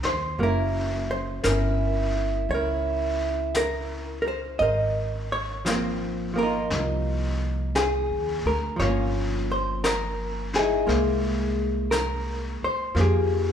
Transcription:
0.00 0.36 D#2 medium
0.00 0.37 A#3 soft
0.00 0.38 C#4 soft
0.00 0.39 G#4 soft
0.00 snare soft
0.05 0.36 C5 medium
0.38 1.40 F#1 medium
0.38 4.60 F#3 soft
0.38 4.61 A#3 soft
0.38 brush sweep soft
0.43 1.46 E4 medium
0.43 1.43 A#4 medium
1.11 1.44 C5 medium
1.43 2.45 G1 medium
1.43 3.52 C#4 soft
1.43 2.54 E4 soft
1.43 2.45 A#4 medium
1.43 brush sweep soft
1.43 snare soft
1.43 hi-hat pedal medium
2.49 4.56 C#2 medium
2.49 3.51 C#5 medium
2.49 brush sweep soft
2.54 4.59 E4 soft
2.54 3.56 A#4 soft
3.54 4.21 A#4 medium
3.54 brush sweep soft
3.54 snare soft
3.54 hi-hat pedal soft
4.22 4.27 A#4 soft
4.28 4.61 C5 medium
4.59 6.66 G#1 medium
4.59 6.35 A#4 medium
4.59 5.66 C5 soft
4.59 5.28 D#5 medium
4.59 brush sweep soft
5.32 5.63 C#5 medium
5.65 6.33 F3 soft
5.65 6.35 A#3 soft
5.65 brush sweep soft
5.65 snare soft
5.65 hi-hat pedal soft
5.70 6.36 C4 soft
6.34 8.75 F3 soft
6.34 8.79 A#3 soft
6.34 6.42 C4 soft
6.39 8.45 D#4 soft
6.39 7.71 A#4 medium
6.43 7.75 F4 soft
6.70 8.06 C2 medium
6.70 brush sweep soft
6.70 snare soft
7.75 8.43 G#4 medium
7.75 brush sweep soft
7.75 snare soft
7.75 hi-hat pedal soft
8.10 8.42 D#2 soft
8.45 8.77 D2 medium
8.45 8.77 A#4 medium
8.76 10.83 G1 medium
8.76 10.86 F3 soft
8.76 9.47 C#5 medium
8.76 brush sweep soft
8.76 snare soft
8.82 10.58 A#3 soft
8.82 10.85 F4 medium
8.82 9.83 A#4 soft
8.87 10.58 C#4 soft
9.52 9.81 C5 medium
9.84 10.51 A#4 medium
9.84 brush sweep soft
9.84 snare soft
9.84 hi-hat pedal soft
10.53 11.91 G#4 medium
10.53 snare soft
10.58 10.87 D#4 soft
10.58 12.61 E4 soft
10.87 12.59 C2 medium
10.87 12.94 G#3 soft
10.87 12.94 A#3 soft
10.87 brush sweep soft
10.87 snare soft
11.91 12.59 A#4 medium
11.91 brush sweep soft
11.91 snare soft
11.91 hi-hat pedal soft
12.63 12.97 C5 medium
12.63 muted upright bass stroke soft
12.95 13.52 F2 medium
12.95 13.52 F3 soft
12.95 13.52 A#3 soft
12.95 brush sweep soft
12.95 snare soft
13.00 13.52 G4 medium
13.00 13.52 G#4 medium

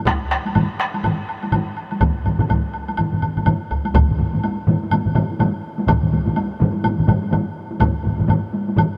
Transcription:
0.06 taiko rim medium
0.06 taiko medium
0.06 taiko high medium
0.06 high woodblock medium
0.31 taiko rim medium
0.31 high woodblock soft
0.45 taiko high soft
0.45 high woodblock soft
0.55 taiko low-mid medium
0.55 taiko mid medium
0.55 taiko high medium
0.55 high woodblock medium
0.79 taiko rim medium
0.79 high woodblock soft
0.94 taiko high soft
0.94 high woodblock soft
1.04 taiko low-mid medium
1.04 taiko mid medium
1.04 taiko high medium
1.04 high woodblock soft
1.29 high woodblock soft
1.43 taiko high soft
1.43 high woodblock soft
1.52 taiko low-mid medium
1.52 taiko mid medium
1.52 taiko high medium
1.52 high woodblock medium
1.77 high woodblock soft
1.91 taiko high soft
1.91 high woodblock soft
2.00 taiko medium
2.00 taiko low-mid medium
2.00 taiko mid medium
2.00 taiko high medium
2.00 high woodblock medium
2.24 taiko low-mid medium
2.24 taiko mid medium
2.24 taiko high soft
2.24 high woodblock soft
2.39 taiko low-mid medium
2.39 taiko mid medium
2.39 taiko high soft
2.39 high woodblock soft
2.49 taiko medium
2.49 taiko low-mid medium
2.49 taiko mid medium
2.49 taiko high medium
2.49 high woodblock soft
2.74 high woodblock soft
2.88 taiko high soft
2.88 high woodblock soft
2.97 taiko low-mid medium
2.97 taiko mid medium
2.97 taiko high medium
2.97 high woodblock soft
3.12 taiko low-mid medium
3.12 taiko mid medium
3.21 taiko low-mid medium
3.21 taiko mid medium
3.21 high woodblock soft
3.36 taiko low-mid medium
3.36 taiko mid medium
3.36 taiko high soft
3.36 high woodblock soft
3.45 taiko low-mid medium
3.45 taiko mid medium
3.45 taiko high medium
3.45 high woodblock medium
3.71 taiko medium
3.71 high woodblock soft
3.85 taiko high soft
3.85 high woodblock soft
3.94 taiko loud
3.94 taiko low-mid medium
3.94 taiko mid medium
3.94 taiko high medium
3.94 high woodblock medium
4.09 taiko low-mid medium
4.09 taiko mid medium
4.18 taiko low-mid medium
4.18 taiko mid medium
4.18 taiko high medium
4.33 taiko low-mid medium
4.33 taiko mid medium
4.33 taiko high medium
4.44 taiko high medium
4.44 high woodblock soft
4.67 taiko low-mid medium
4.67 taiko mid loud
4.67 taiko high medium
4.83 taiko high medium
4.91 taiko low-mid medium
4.91 taiko mid medium
4.91 taiko high medium
4.91 high woodblock medium
5.05 taiko low-mid medium
5.05 taiko mid medium
5.15 taiko low-mid loud
5.15 taiko mid loud
5.15 taiko high medium
5.15 high woodblock soft
5.31 taiko high medium
5.39 taiko low-mid loud
5.39 taiko mid loud
5.39 taiko high medium
5.39 high woodblock soft
5.78 taiko high medium
5.87 taiko loud
5.87 taiko low-mid medium
5.87 taiko mid medium
5.87 taiko high medium
5.87 high woodblock medium
6.02 taiko low-mid medium
6.02 taiko mid medium
6.12 taiko low-mid medium
6.12 taiko mid medium
6.12 taiko high medium
6.27 taiko low-mid medium
6.27 taiko mid medium
6.27 taiko high medium
6.36 taiko high medium
6.36 high woodblock soft
6.60 taiko low-mid medium
6.60 taiko mid loud
6.60 taiko high medium
6.74 taiko high medium
6.84 taiko low-mid medium
6.84 taiko mid medium
6.84 taiko high medium
6.84 high woodblock medium
6.98 taiko low-mid medium
6.98 taiko mid medium
7.08 taiko low-mid loud
7.08 taiko mid medium
7.08 taiko high medium
7.08 high woodblock soft
7.23 taiko high medium
7.31 taiko low-mid loud
7.31 taiko mid loud
7.31 taiko high medium
7.31 high woodblock soft
7.71 taiko high medium
7.80 taiko medium
7.80 taiko low-mid medium
7.80 taiko mid loud
7.80 taiko high medium
7.80 high woodblock medium
8.04 taiko low-mid medium
8.04 taiko mid medium
8.04 taiko high medium
8.18 taiko low-mid medium
8.18 taiko mid medium
8.18 taiko high medium
8.28 taiko low-mid loud
8.28 taiko mid loud
8.28 taiko high medium
8.28 high woodblock soft
8.53 taiko high medium
8.68 taiko high medium
8.77 taiko low-mid loud
8.77 taiko mid loud
8.77 taiko high medium
8.77 high woodblock medium

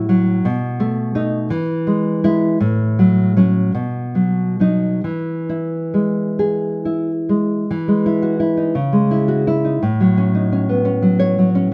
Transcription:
0.00 0.42 A2 medium
0.00 0.46 E4 medium
0.09 0.46 F#3 medium
0.45 1.48 B2 medium
0.80 1.14 A3 medium
1.15 1.48 A3 soft
1.15 1.48 D#4 medium
1.50 2.57 E3 medium
1.87 2.23 G#3 medium
2.24 2.58 G#3 medium
2.24 2.58 E4 medium
2.60 3.72 A2 medium
2.99 3.35 F#3 medium
3.37 3.72 F#3 soft
3.37 3.72 C#4 medium
3.75 5.00 B2 medium
4.15 4.59 F#3 soft
4.60 5.00 F#3 soft
4.60 5.01 D#4 medium
5.04 7.64 E3 medium
5.49 6.84 E4 soft
5.94 7.28 G#3 soft
6.39 7.11 G#4 medium
6.85 7.69 E4 soft
7.29 7.69 G#3 soft
7.71 8.72 E3 medium
7.88 8.75 G#3 soft
8.06 8.38 E4 medium
8.22 8.40 F#4 medium
8.40 8.74 E4 soft
8.57 8.75 D#4 soft
8.75 9.79 C#3 medium
8.93 9.83 G#3 soft
9.11 9.46 E4 soft
9.28 9.46 F#4 medium
9.47 9.83 E4 medium
9.65 9.83 D#4 soft
9.83 11.74 A2 medium
10.00 11.01 F#3 soft
10.17 10.51 C#4 medium
10.35 10.69 D#4 soft
10.52 10.84 C#4 soft
10.69 11.73 B3 soft
10.85 11.54 C#4 soft
11.02 11.37 F#3 soft
11.19 11.48 C#5 medium
11.39 11.71 F#3 soft
11.55 11.74 C#4 medium

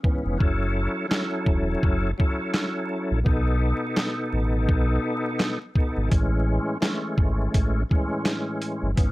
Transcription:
0.03 0.37 G#2 medium
0.03 0.38 E3 medium
0.03 0.38 B3 medium
0.03 0.37 C#4 medium
0.03 kick medium
0.25 0.38 F1 medium
0.38 0.88 F#1 loud
0.38 1.06 F#3 medium
0.38 1.06 C#4 medium
0.38 1.07 E4 medium
0.38 1.07 A4 loud
0.38 kick loud
1.08 2.10 F#3 medium
1.08 2.10 C#4 medium
1.08 2.11 E4 medium
1.08 2.11 A4 loud
1.08 snare loud
1.08 clap medium
1.46 1.77 E1 medium
1.46 kick loud
1.83 2.13 F#1 medium
1.83 kick loud
2.18 3.18 F#3 medium
2.18 3.19 C#4 medium
2.18 3.19 E4 medium
2.18 3.20 A4 medium
2.18 kick medium
2.54 snare loud
2.54 clap medium
3.11 3.23 A#1 medium
3.24 3.73 B1 loud
3.24 5.58 B2 medium
3.24 5.58 B3 medium
3.24 5.59 D#4 medium
3.24 5.59 A4 loud
3.24 kick loud
3.97 snare loud
3.97 clap medium
4.33 4.70 A1 medium
4.69 4.99 B1 medium
4.69 kick loud
5.40 snare loud
5.40 clap medium
5.75 6.09 B2 medium
5.75 6.09 B3 medium
5.75 6.10 D#4 medium
5.75 6.10 A4 medium
5.75 kick medium
5.97 6.09 G#1 medium
6.09 6.59 A1 loud
6.09 6.77 A2 medium
6.09 6.77 E3 medium
6.09 6.78 G#3 medium
6.09 6.78 C#4 loud
6.09 kick loud
6.09 closed hi-hat loud
6.81 7.82 E3 medium
6.81 7.83 G#3 medium
6.81 7.82 A3 medium
6.81 7.83 C#4 medium
6.81 snare loud
6.81 clap medium
6.81 closed hi-hat medium
7.18 7.48 G#1 medium
7.18 kick loud
7.54 7.84 A1 medium
7.54 kick loud
7.54 closed hi-hat loud
7.90 8.90 A2 medium
7.90 8.90 E3 medium
7.90 8.91 G#3 medium
7.90 8.91 C#4 medium
7.90 kick medium
8.25 snare loud
8.25 clap medium
8.25 closed hi-hat medium
8.62 closed hi-hat medium
8.83 8.95 G1 medium
8.95 9.12 G#1 loud
8.95 9.12 G#2 medium
8.95 9.12 E3 medium
8.95 9.12 B3 medium
8.95 9.12 C#4 loud
8.95 kick loud
8.95 closed hi-hat loud

